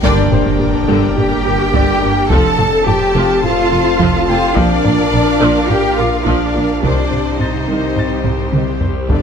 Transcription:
0.03 G1 D3 G3 A#3 D4 G4 A#4 D5 G5, taiko, impact
0.32 G1 G3 G4 C5, taiko low-mid
0.59 G1 A#3 G4, taiko low-mid
0.88 G1 D3 G3
1.17 G4 G5, taiko low-mid
1.45 G1 A#3 G4
1.73 G1 D3 G3 D5, taiko
2.02 G1 G3 D4
2.30 F1 F3 A3 C4 F4 A4 C5 A5, taiko
2.58 F1 A3 F4, taiko low-mid
2.87 F1 C4 F4 G4 G5 A5, taiko low-mid
3.15 F1 F3
3.43 F4 F5, taiko low-mid
3.71 F1 C4 F4
3.99 F1 F3, taiko
4.27 F1 A3 C4 F4 G4 F5 G5
4.56 A#1 F3 A#3 D4 A#4 D5 F5, taiko
4.84 A#1 A#3 A#4, taiko low-mid
5.13 A#1 D4 A#4, taiko low-mid
5.41 A#1 F3 A#3
5.69 G4 G5, taiko low-mid
5.98 A#1 D4 F4 A#4 F5 D6
6.25 A#1 F3 A#3 D4 D5, taiko
6.55 A#1 A#3 F4
6.81 C2 C3 D#3 G3 C4 D4 G4 C5 D5, taiko
7.11 C2 G3 C4, taiko low-mid
7.39 C2 C4 D#4 D#5 A6, taiko low-mid
7.68 C2 C3 D#3
7.96 A6, taiko low-mid
8.25 C2 C4, taiko low-mid
8.52 C2 C3 D#3, taiko mid
8.81 C2 G3, taiko low
9.09 G1 D3 G3 D4 A#4 D5, taiko

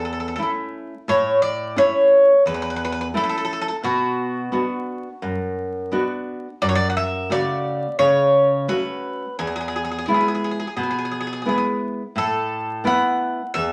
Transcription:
Already playing: E2
0.05 A4
0.13 A4
0.20 A4
0.28 A4
0.36 A3 C#4 E4 A4
0.43 A4
1.08 A2 C#5
1.42 D5
1.76 A3 C#4 E4 C#5
2.46 E2 B4
2.54 B4
2.62 B4
2.70 B4
2.76 B4
2.85 B4
2.92 B4
3.01 B4
3.14 A3 C#4 E4 A4
3.24 A4
3.29 A4
3.38 A4
3.45 A4
3.53 A4
3.61 A4
3.68 A4
3.83 B2 F#4
4.52 B3 D4 F#4
5.22 F#2
5.91 B3 D4 F#4
6.62 F#2 D5
6.69 C#5
6.75 D5
6.90 F#5
6.97 E5
7.30 C#3 A3 F#4 D5
7.99 C#3 C#5
8.68 A3 C#4 F#4 B4
9.39 E2 G#4
9.47 G#4
9.56 G#4
9.61 G#4
9.68 G#4
9.76 G#4
9.85 G#4
9.92 G#4
9.98 G#4
10.06 G#3 B3 E4 G#4
10.14 G#4
10.21 G#4
10.28 G#4
10.35 G#4
10.44 G#4
10.51 G#4
10.60 G#4
10.67 G#4
10.77 B2 G#4
10.83 G#4
10.91 G#4
10.99 G#4
11.05 G#4
11.11 G#4
11.21 G#4
11.27 G#4
11.33 G#4
11.42 G#3 B3 G#4
11.46 E4 G#4
11.58 G#4
12.16 A2 A4
12.84 A3 B3 E4 F#5
13.54 E2 E5

